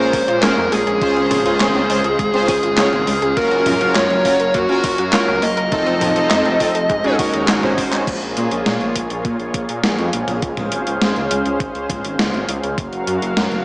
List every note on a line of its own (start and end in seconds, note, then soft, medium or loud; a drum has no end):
0.00 3.33 G#3 medium
0.00 0.99 A#3 medium
0.00 0.15 C#4 medium
0.00 0.99 C#4 medium
0.00 0.15 F4 medium
0.00 0.15 G#4 medium
0.00 0.15 A#4 loud
0.00 0.42 C5 medium
0.13 0.25 A#1 medium
0.13 0.27 C#4 medium
0.13 kick loud
0.13 open hi-hat medium
0.28 0.39 A#2 medium
0.28 0.36 F4 medium
0.28 closed hi-hat medium
0.43 0.54 A#1 loud
0.43 0.53 C#4 medium
0.43 0.50 C#4 loud
0.43 0.53 F4 medium
0.43 0.53 G#4 medium
0.43 0.73 A#4 loud
0.43 0.53 C5 loud
0.43 snare loud
0.43 clap medium
0.43 closed hi-hat medium
0.57 0.69 F2 medium
0.57 0.65 A#3 medium
0.57 closed hi-hat soft
0.72 0.83 A#1 loud
0.72 0.80 G#3 medium
0.72 2.48 G#4 loud
0.72 open hi-hat medium
0.87 0.98 A#1 medium
0.87 1.00 G#4 medium
0.87 closed hi-hat medium
1.01 1.13 C#2 loud
1.01 3.34 C#3 medium
1.01 1.09 G#3 medium
1.01 1.42 C#4 medium
1.01 1.42 F4 medium
1.01 1.42 G#4 medium
1.01 3.34 C5 medium
1.01 1.42 C5 loud
1.01 5.68 F5 medium
1.01 kick loud
1.01 closed hi-hat soft
1.16 1.27 C#2 medium
1.16 1.24 C4 medium
1.16 closed hi-hat soft
1.31 1.42 G#1 medium
1.31 1.45 C#4 medium
1.31 open hi-hat medium
1.31 mid tom loud
1.45 1.57 C#2 medium
1.45 1.86 C#4 medium
1.45 1.86 F4 medium
1.45 1.53 F4 medium
1.45 1.86 G#4 medium
1.45 1.86 C5 medium
1.45 closed hi-hat medium
1.60 1.72 G#1 loud
1.60 1.68 C#4 loud
1.60 snare loud
1.60 clap medium
1.60 closed hi-hat medium
1.75 1.86 C#2 medium
1.75 1.83 C4 medium
1.75 closed hi-hat soft
1.89 2.01 C#2 loud
1.89 1.97 G#3 medium
1.89 2.00 C#4 medium
1.89 2.00 F4 medium
1.89 2.00 G#4 medium
1.89 2.00 C5 loud
1.89 open hi-hat medium
2.04 2.16 C#2 medium
2.04 2.17 G#4 medium
2.04 closed hi-hat medium
2.19 2.30 G#1 loud
2.19 2.27 G#3 medium
2.19 kick loud
2.19 closed hi-hat medium
2.34 2.45 C#2 medium
2.34 2.41 C4 medium
2.34 2.51 C#4 medium
2.34 2.51 F4 medium
2.34 2.51 G#4 medium
2.34 2.51 C5 loud
2.34 closed hi-hat soft
2.48 2.60 C#2 loud
2.48 2.63 C#4 medium
2.48 3.40 G#4 loud
2.48 kick loud
2.48 open hi-hat medium
2.63 2.74 G#1 medium
2.63 2.71 F4 medium
2.63 closed hi-hat medium
2.78 2.89 C#2 loud
2.78 2.85 C#4 loud
2.78 2.89 C#4 medium
2.78 2.89 F4 medium
2.78 2.89 G#4 medium
2.78 2.89 C#5 loud
2.78 snare loud
2.78 clap loud
2.78 closed hi-hat medium
2.93 3.04 G#1 medium
2.93 3.00 C4 medium
2.93 closed hi-hat soft
3.07 3.19 C#2 loud
3.07 3.15 G#3 medium
3.07 open hi-hat medium
3.22 3.33 C#2 medium
3.22 3.35 G#4 medium
3.22 closed hi-hat medium
3.37 3.48 F#1 loud
3.37 5.70 F#3 medium
3.37 3.44 A#3 medium
3.37 5.70 C#4 medium
3.37 3.77 C#4 medium
3.37 3.77 F4 medium
3.37 3.77 F#4 medium
3.37 5.70 A#4 medium
3.37 3.77 A#4 loud
3.37 3.92 A#4 loud
3.37 kick loud
3.37 closed hi-hat medium
3.51 3.63 F#1 medium
3.51 3.59 C#4 medium
3.51 closed hi-hat soft
3.66 3.78 F#2 loud
3.66 3.80 F4 medium
3.66 open hi-hat medium
3.66 mid tom medium
3.81 3.92 F#1 medium
3.81 4.22 C#4 medium
3.81 4.22 F4 medium
3.81 3.88 F#4 medium
3.81 4.22 F#4 medium
3.81 4.22 A#4 medium
3.81 closed hi-hat medium
3.95 4.07 F#2 loud
3.95 4.03 F4 loud
3.95 4.56 C#5 loud
3.95 snare loud
3.95 clap loud
3.95 closed hi-hat medium
4.10 4.22 F#1 medium
4.10 4.18 C#4 medium
4.10 closed hi-hat soft
4.25 4.36 F#1 medium
4.25 4.33 A#3 medium
4.25 4.36 C#4 loud
4.25 4.36 F4 medium
4.25 4.36 F#4 medium
4.25 4.36 A#4 loud
4.25 kick medium
4.25 open hi-hat medium
4.40 4.51 F#1 medium
4.40 4.53 A#4 medium
4.40 closed hi-hat medium
4.54 4.66 F#2 loud
4.54 4.62 A#3 medium
4.54 5.15 F#4 medium
4.54 kick loud
4.54 closed hi-hat medium
4.69 4.80 F#1 medium
4.69 4.77 C#4 medium
4.69 4.86 C#4 medium
4.69 4.86 F4 medium
4.69 4.86 F#4 medium
4.69 4.86 A#4 loud
4.69 closed hi-hat soft
4.84 4.95 F#1 loud
4.84 4.98 F4 medium
4.84 kick loud
4.84 open hi-hat medium
4.98 5.10 F#2 medium
4.98 5.06 F#4 medium
4.98 closed hi-hat medium
5.13 5.25 F#1 loud
5.13 5.24 C#4 medium
5.13 5.21 F4 loud
5.13 5.24 F4 medium
5.13 5.24 F#4 medium
5.13 5.44 A#4 medium
5.13 5.24 C#5 loud
5.13 snare loud
5.13 clap loud
5.13 closed hi-hat medium
5.28 5.39 C#2 medium
5.28 5.36 C#4 medium
5.28 closed hi-hat soft
5.42 5.54 F#1 loud
5.42 5.50 A#3 medium
5.42 7.15 D#5 medium
5.42 open hi-hat medium
5.57 5.69 F#1 medium
5.57 5.70 A#4 medium
5.57 closed hi-hat medium
5.72 5.83 F1 loud
5.72 6.89 F3 medium
5.72 5.80 A3 medium
5.72 6.89 C4 medium
5.72 6.13 C4 medium
5.72 6.89 D#4 medium
5.72 6.13 D#4 medium
5.72 6.13 F4 medium
5.72 6.89 A4 medium
5.72 6.13 A4 loud
5.72 kick loud
5.72 closed hi-hat medium
5.86 5.98 F1 medium
5.86 5.94 C4 medium
5.86 closed hi-hat soft
6.01 6.13 F2 loud
6.01 6.15 D#4 medium
6.01 open hi-hat medium
6.01 mid tom medium
6.16 6.28 F1 medium
6.16 6.57 C4 medium
6.16 6.57 D#4 medium
6.16 6.24 F4 medium
6.16 6.57 F4 medium
6.16 6.57 A4 medium
6.16 closed hi-hat medium
6.30 6.42 F2 loud
6.30 6.38 D#4 loud
6.30 snare loud
6.30 clap loud
6.30 closed hi-hat medium
6.45 6.57 F1 medium
6.45 6.53 C4 medium
6.45 closed hi-hat soft
6.60 6.72 F1 medium
6.60 6.68 A3 medium
6.60 6.71 C4 medium
6.60 6.71 D#4 medium
6.60 6.71 F4 medium
6.60 6.71 A4 loud
6.60 kick medium
6.60 open hi-hat medium
6.75 6.86 F1 medium
6.75 6.88 A4 medium
6.75 closed hi-hat medium
6.89 7.01 G#2 loud
6.89 6.97 G#3 medium
6.89 8.06 G#3 medium
6.89 8.06 C#4 medium
6.89 8.06 F#4 medium
6.89 kick loud
6.89 closed hi-hat medium
7.04 7.16 G#1 medium
7.04 7.12 C#4 medium
7.04 7.16 C#4 medium
7.04 7.16 D#4 medium
7.04 7.16 F#4 medium
7.04 7.16 G#4 loud
7.04 closed hi-hat soft
7.19 7.30 F#1 medium
7.19 7.60 C#4 medium
7.19 7.60 D#4 medium
7.19 7.32 F#4 medium
7.19 7.60 F#4 medium
7.19 7.60 A#4 medium
7.19 kick loud
7.19 open hi-hat medium
7.34 7.45 D#2 medium
7.34 7.48 G#4 medium
7.34 closed hi-hat medium
7.48 7.60 G#1 loud
7.48 7.62 D#4 medium
7.48 snare loud
7.48 clap loud
7.48 closed hi-hat medium
7.63 7.75 G#1 medium
7.63 7.77 G#3 medium
7.63 8.04 C#4 medium
7.63 8.04 D#4 medium
7.63 8.04 F#4 medium
7.63 8.04 C5 medium
7.63 closed hi-hat soft
7.63 mid tom medium
7.78 7.89 G#1 loud
7.78 7.92 D#4 medium
7.78 kick medium
7.78 open hi-hat medium
7.92 8.04 G#1 medium
7.92 8.06 G#3 medium
7.92 clap medium
7.92 closed hi-hat medium
8.07 8.19 A#1 loud
8.07 10.40 A#3 medium
8.07 10.40 F4 medium
8.07 12.74 G#4 medium
8.07 10.40 C#5 medium
8.07 kick loud
8.07 closed hi-hat medium
8.07 crash medium
8.22 8.33 A#1 medium
8.22 closed hi-hat soft
8.37 8.48 A#2 medium
8.37 closed hi-hat loud
8.51 8.63 A#1 medium
8.51 closed hi-hat medium
8.66 8.77 A#2 loud
8.66 snare loud
8.66 closed hi-hat medium
8.81 8.92 A#1 medium
8.81 closed hi-hat soft
8.96 9.07 A#1 medium
8.96 kick medium
8.96 closed hi-hat loud
9.10 9.22 A#1 medium
9.10 closed hi-hat medium
9.25 9.36 A#2 loud
9.25 kick loud
9.25 closed hi-hat medium
9.40 9.51 A#1 medium
9.40 closed hi-hat soft
9.54 9.66 A#1 medium
9.54 kick loud
9.54 closed hi-hat loud
9.69 9.81 A#2 medium
9.69 closed hi-hat medium
9.84 9.95 A#1 loud
9.84 snare loud
9.84 closed hi-hat medium
9.98 10.10 F2 medium
9.98 closed hi-hat soft
10.13 10.25 A#1 medium
10.13 closed hi-hat medium
10.28 10.39 A#1 medium
10.28 closed hi-hat medium
10.28 mid tom medium
10.42 10.54 C#2 loud
10.42 12.76 C#4 medium
10.42 12.76 C5 medium
10.42 12.76 F5 medium
10.42 kick loud
10.42 closed hi-hat medium
10.57 10.69 C#2 medium
10.57 closed hi-hat soft
10.57 mid tom medium
10.72 10.83 G#1 medium
10.72 closed hi-hat loud
10.87 10.98 C#2 medium
10.87 closed hi-hat medium
11.02 11.13 G#1 loud
11.02 snare loud
11.02 closed hi-hat medium
11.16 11.28 C#2 medium
11.16 closed hi-hat soft
11.31 11.42 C#2 medium
11.31 closed hi-hat loud
11.46 11.57 C#2 medium
11.46 closed hi-hat medium
11.60 11.71 G#1 loud
11.60 kick loud
11.60 closed hi-hat medium
11.75 11.86 C#2 medium
11.75 closed hi-hat soft
11.90 12.01 C#2 medium
11.90 kick loud
11.90 closed hi-hat loud
11.90 mid tom medium
12.04 12.16 G#1 medium
12.04 closed hi-hat medium
12.19 12.30 C#2 loud
12.19 snare loud
12.19 closed hi-hat medium
12.34 12.45 G#1 medium
12.34 closed hi-hat soft
12.49 12.60 C#2 loud
12.49 closed hi-hat medium
12.63 12.75 C#2 medium
12.63 closed hi-hat medium
12.78 12.89 F#1 loud
12.78 13.65 F#3 medium
12.78 13.65 F#4 medium
12.78 13.65 A#4 medium
12.78 13.65 F5 medium
12.78 kick loud
12.78 closed hi-hat medium
12.93 13.04 F#1 medium
12.93 closed hi-hat soft
13.07 13.19 F#2 medium
13.07 closed hi-hat medium
13.22 13.33 F#1 medium
13.22 closed hi-hat medium
13.37 13.48 F#2 loud
13.37 snare loud
13.37 closed hi-hat medium
13.52 13.63 F#1 medium
13.52 closed hi-hat soft